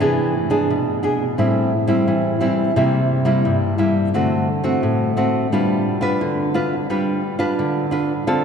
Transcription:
0.00 E3 B3 D4 G#4
0.50 B3 D4 G#4
0.70 B2
1.03 B3 D4 G#4
1.38 A2 G3 C4 E4
1.87 G3 C4 E4
2.08 E3
2.41 G3 C4 E4
2.76 C3 G3 A#3 E4
3.25 G3 A#3 E4
3.45 G2
3.78 G3 A#3 E4
4.14 D3 A3 C4 F#4
4.64 A3 C4 F#4
4.83 A2
5.17 A3 C4 F#4
5.52 G3 D4 F4 B4
6.01 D4 F4 B4
6.21 D3
6.54 D4 F4 B4
6.90 G3 D4 F4 B4
7.39 D4 F4 B4
7.59 D3
7.91 D4 F4 B4
8.27 D3 C4 F4 A4

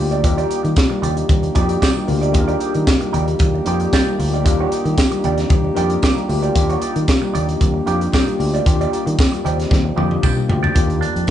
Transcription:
Already playing: D2 D#3 G3 A#3 D4 F#4 G4
0.00 F4 G4
0.11 D#4 G4 D5, closed hi-hat
0.23 D#2 A#3 D4 F4 G4, muted clean electric guitar stroke, kick, closed hi-hat
0.38 D#4 G4 D5, closed hi-hat, muted conga
0.49 D#4 G4 D5, closed hi-hat
0.63 D#3, muted clean electric guitar stroke, closed hi-hat, high conga
0.76 kick, snare, tambourine, muted conga
0.90 muted clean electric guitar stroke, muted conga, high conga
1.02 D#2 D#4 G4 D5, closed hi-hat, low conga
1.17 muted clean electric guitar stroke, closed hi-hat
1.29 D#2, kick, closed hi-hat, high conga, low conga
1.43 muted clean electric guitar stroke, closed hi-hat
1.55 F2 A#3 D4 D#4 F4 F#4 G4 D5 G5, kick, closed hi-hat
1.62 G4
1.69 muted clean electric guitar stroke, closed hi-hat
1.81 D#4 G4 D5 D#5, kick, snare, tambourine, high conga
1.96 muted clean electric guitar stroke, muted conga, high conga
2.07 D2 A#3 D4 F4 A#4 D5, muted clean electric guitar stroke, open hi-hat, low conga
2.21 D#4 G4 D5, closed hi-hat
2.32 D#2 A#3 D4 F4 G#4, kick, closed hi-hat
2.40 A#4
2.48 D#4 G4 D5, closed hi-hat
2.59 D#4 G4 D5, closed hi-hat
2.74 D#3, muted clean electric guitar stroke, closed hi-hat, high conga
2.87 kick, snare, tambourine
3.01 muted clean electric guitar stroke, closed hi-hat, muted conga, high conga
3.13 D#2 D#4 G4 D5, closed hi-hat, low conga
3.27 muted clean electric guitar stroke, closed hi-hat
3.39 D#2, kick, closed hi-hat, muted conga, high conga, low conga
3.55 muted clean electric guitar stroke, muted conga
3.65 F2 A#3 D4 D#4 F4 G4 D5, closed hi-hat
3.80 muted clean electric guitar stroke, closed hi-hat
3.93 D#4 G4 D5, kick, snare, tambourine, high conga
4.07 muted clean electric guitar stroke, muted conga, high conga
4.18 D2 A#3 D4 F4 G4, muted clean electric guitar stroke, open hi-hat
4.34 D#4 G4 D5, closed hi-hat
4.44 D#2 A#3 D4 F4 G4, muted clean electric guitar stroke, kick, closed hi-hat, muted conga
4.59 D#4 G4 D5, muted conga
4.72 D#4 G4 D5, closed hi-hat
4.85 D#3, muted clean electric guitar stroke, closed hi-hat, high conga
4.98 kick, snare, tambourine, muted conga
5.11 muted clean electric guitar stroke, closed hi-hat, muted conga, high conga
5.24 D#2 D#4 G4 D5, closed hi-hat, low conga
5.38 muted clean electric guitar stroke, snare, closed hi-hat
5.49 D#2, muted clean electric guitar stroke, kick, closed hi-hat, muted conga, high conga, low conga
5.64 muted clean electric guitar stroke, muted conga
5.75 F2 A#3 D4 D#4 F4 G4 A#4 D5, closed hi-hat
5.90 muted clean electric guitar stroke, closed hi-hat
6.02 D#4 G4 D5 D#5, kick, snare, tambourine, high conga
6.16 muted clean electric guitar stroke, closed hi-hat, muted conga, high conga
6.28 D2 A#3 D4 F4 G4 G5, muted clean electric guitar stroke, open hi-hat
6.43 D#4 G4 D5, closed hi-hat
6.54 D#2 A#3 D4 F4 G4, muted clean electric guitar stroke, kick, closed hi-hat
6.69 D#4 G4 D5, closed hi-hat, muted conga
6.82 D#4 G4 D5, closed hi-hat
6.95 D#3, muted clean electric guitar stroke, closed hi-hat, high conga
7.08 kick, snare, tambourine, muted conga
7.22 muted clean electric guitar stroke, muted conga, high conga
7.34 D#2 D#4 G4 D5, closed hi-hat, low conga
7.48 muted clean electric guitar stroke, closed hi-hat
7.61 D#2, kick, closed hi-hat, muted conga, high conga, low conga
7.74 muted clean electric guitar stroke
7.86 F2 A#3 D4 D#4 F4 G4 D5, closed hi-hat
8.01 muted clean electric guitar stroke, closed hi-hat
8.12 D#4 G4 D5, kick, snare, tambourine, muted conga, high conga
8.26 muted clean electric guitar stroke, closed hi-hat, high conga
8.39 D2 A#3 D4 F4 G4, muted clean electric guitar stroke, open hi-hat
8.54 D#4 G4 D5, closed hi-hat
8.65 D#2 A#3 D4 F4 G4, kick, closed hi-hat, muted conga
8.79 D#4 G4 D5, closed hi-hat, muted conga
8.92 D#4 G4 D5, closed hi-hat
9.06 D#3, muted clean electric guitar stroke, closed hi-hat, high conga
9.18 kick, snare, tambourine
9.32 muted clean electric guitar stroke, closed hi-hat, high conga
9.44 D#2 D#4 G4 C5 D5, closed hi-hat, low conga
9.59 muted clean electric guitar stroke, snare, closed hi-hat
9.70 D#2 D5, kick, snare, muted conga, high conga, low conga
9.85 muted clean electric guitar stroke
9.96 F2 A#3 D4 D#4 F4 G4 D5 D#5, high tom
10.10 muted clean electric guitar stroke, high tom
10.22 D#4 G4 D5 F5, kick, mid tom, tambourine, high conga
10.37 muted clean electric guitar stroke, muted conga, high conga
10.48 D2 A#3 D4 F4 G4 G5, muted clean electric guitar stroke, floor tom
10.63 D#4 G4 D5, floor tom
10.75 D#2 D#3 G3 A#3 D4 F4 G4, kick, closed hi-hat, muted conga
10.89 closed hi-hat, muted conga
11.01 D4, closed hi-hat
11.16 F2, closed hi-hat
11.27 tambourine

